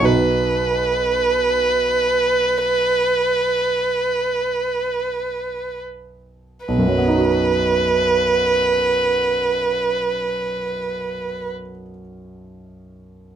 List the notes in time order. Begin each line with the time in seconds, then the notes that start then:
0.00 B1 D#4 F#4 B4
0.05 B4
6.66 B1 B4
6.78 F#2
6.88 F#3
6.98 B3
7.08 D#4
7.18 F#4